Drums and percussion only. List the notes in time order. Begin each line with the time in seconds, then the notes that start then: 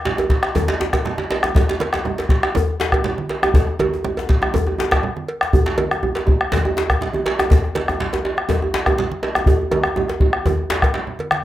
0.05 bombo rim, djembe slap, low conga
0.17 bombo rim, cowbell, djembe slap, djembe tone
0.30 bombo low, djembe slap
0.43 bombo rim, djembe slap, high conga
0.55 cowbell, djembe slap, high conga, low conga, djembe bass
0.68 bombo rim, djembe slap, high conga
0.80 bombo rim, djembe slap, djembe tone, high conga
0.93 bombo rim, bombo low, cowbell, djembe slap, djembe tone
1.05 djembe slap, high conga, low conga
1.18 djembe slap, high conga
1.31 cowbell, djembe slap
1.43 bombo rim, djembe slap, djembe tone
1.55 bombo low, djembe slap, low conga, djembe bass
1.68 bombo rim, djembe slap, high conga
1.80 cowbell, djembe slap, high conga
1.93 bombo rim, djembe slap, high conga, djembe tone
2.05 djembe slap, high conga, djembe tone, low conga
2.18 cowbell, djembe slap
2.20 djembe slap
2.29 bombo rim, bombo low, djembe slap
2.43 bombo rim, djembe slap
2.45 djembe slap
2.55 cowbell, high conga, low conga, djembe bass
2.68 djembe slap, high conga
2.80 bombo rim, djembe slap
2.92 bombo rim, bombo low, cowbell, djembe tone
3.04 bombo rim, djembe slap, low conga
3.06 djembe slap
3.18 high conga
3.29 cowbell, djembe slap
3.43 bombo rim, djembe slap, djembe tone
3.54 bombo low, djembe slap, low conga, djembe bass
3.67 bombo rim, djembe slap
3.79 cowbell, djembe slap, high conga, djembe tone
3.94 djembe tone
4.04 bombo rim, djembe tone, low conga
4.17 cowbell, djembe slap, djembe tone
4.29 bombo low, djembe slap
4.31 djembe slap
4.42 bombo rim, djembe slap, djembe tone, high conga
4.54 cowbell, high conga, low conga, djembe bass
4.67 bombo rim, djembe tone, high conga
4.78 bombo rim, djembe slap, high conga, djembe tone
4.91 bombo rim, bombo low, cowbell, djembe slap, djembe tone
5.03 high conga, low conga
5.17 high conga
5.28 cowbell, djembe slap
5.41 bombo rim, djembe slap
5.53 bombo low, low conga, djembe bass
5.66 bombo rim, djembe slap
5.78 cowbell, djembe tone, high conga
5.91 bombo rim, djembe tone
6.03 bombo rim, djembe bass, low conga
6.15 bombo rim, cowbell, djembe slap
6.27 bombo low, djembe slap, djembe tone
6.41 bombo rim, djembe slap, high conga
6.52 cowbell, djembe slap, high conga, low conga, djembe bass
6.65 bombo rim, djembe tone, high conga
6.76 bombo rim, djembe slap, high conga
6.90 bombo rim, bombo low, cowbell, djembe tone
7.01 djembe slap, high conga, low conga
7.13 high conga, djembe tone
7.26 cowbell, djembe slap
7.39 bombo rim, djembe slap, djembe tone
7.50 bombo low, djembe slap, low conga, djembe bass
7.64 bombo rim, djembe slap
7.75 cowbell, djembe slap, high conga
7.88 bombo rim, djembe tone
8.00 bombo rim, djembe slap, low conga
8.13 bombo rim, cowbell, djembe slap, djembe tone
8.25 djembe slap
8.37 bombo rim, djembe slap, high conga
8.49 cowbell, djembe slap, high conga, low conga, djembe bass
8.62 bombo rim, high conga, djembe tone
8.74 bombo rim, djembe slap, high conga
8.86 bombo rim, bombo low, cowbell, djembe tone
8.98 djembe slap, high conga, low conga
9.12 high conga
9.23 cowbell, djembe slap
9.35 bombo rim, djembe slap, djembe tone
9.46 bombo low, djembe tone, low conga, djembe bass
9.61 djembe slap, high conga
9.71 bombo rim, cowbell, djembe tone, high conga
9.84 bombo rim, djembe tone
9.96 djembe tone, low conga
10.08 bombo rim, cowbell, djembe slap, high conga
10.20 bombo low, djembe slap, djembe tone
10.33 bombo rim, djembe slap
10.46 cowbell, djembe slap, high conga, djembe tone, low conga, djembe bass
10.70 bombo rim, djembe slap
10.82 bombo rim, bombo low, cowbell, djembe slap, djembe tone, low conga
10.94 bombo rim, djembe slap, low conga
11.07 low conga
11.19 cowbell, high conga
11.31 bombo rim, djembe slap, high conga